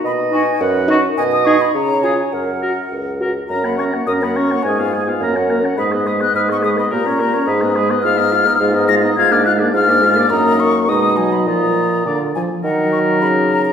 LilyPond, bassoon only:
\new Staff \with { instrumentName = "Bassoon" } { \clef bass \time 2/4 \key ces \lydian \tempo 4 = 105 b,4 fis,4 | \key fis \major b,4 cis4 | fis,4 cis,4 | fis,4 fis,4 |
aes,4 fis,4 | gis,4 gis,4 | bes,4 gis,4 | \key ees \minor aes,4 aes,4 |
aes,4 aes,4 | ges,4 ces4 | bes,4 bes,8 r8 | ees4 des4 | }